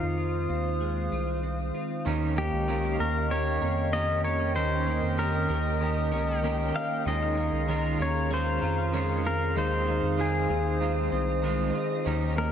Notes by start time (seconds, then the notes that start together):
Already playing: D#3 G#3 C4 F4 C5 F5 D#6
0.03 F2
0.18 F4
0.49 D#2 C4
0.81 G#3
1.12 C2 F4
1.43 C4
1.75 F4
2.05 D#2 D#3 C#4 G4 A#4 D#5 F5 G5 C#6
2.36 A#3 C#4 G4 A#4
2.53 C#2
2.68 D#3 C#4 F4 G4 A#4
2.84 G4
2.99 D#2 A#3 C#4 G4 A#4
3.30 D#3 C#4 G4 A#4 C#5
3.61 F2 C#4 G4 A#4
3.93 D#3 A#3 C#4 G4 A#4 D#5
4.24 C#4 G4 A#4 C#5
4.55 D#2 D#3 C#4 G4 A#4 C5 D#6
4.86 A#3 C#4 G4 A#4
5.02 F2
5.17 D#3 C#4 G4 A#4
5.49 D#2 A#3 C#4 G4 A#4
5.80 D#3 C#4 G4 A#4 G5
6.12 C#2 C#4 G4 A#4
6.43 D#3 A#3 C#4 G4 A#4
6.74 C#4 G4 A#4 F5
7.06 D#2 D#3 G#3 C#4 F4 G#4 A#4 D#5 F5 A#5
7.37 C#4 F4 A#4
7.52 C#2
7.68 D#3 G#3 C#4 F4 A#4
7.98 D#2 C#4 F4 A#4 C#5 F5
8.29 G#3 C#4 F4 G#4 A#4
8.34 C5
8.46 A#4
8.61 F2 C#4 F4 A#4
8.92 D#3 G#3 C#4 F4 A#4
9.24 C#4 F4 A#4
9.55 D#2 D#3 G#3 C4 D#4 F4 C5 D#6
9.86 G#3 C4 D#4 F4
10.03 F2
10.17 D#3 G#3 C4 D#4 F4 G#4
10.48 D#2 G#3 C4 D#4 F4
10.79 G#3 C4 D#4 F4
11.11 C2 C4 D#4 F4 D#5
11.42 D#3 G#3 C4 D#4 F4
11.73 C4 D#4 F4
12.05 D#2 D#3 C#4 G4 A#4 D#5 G5 C#6
12.36 A#3 C#4 G4 A#4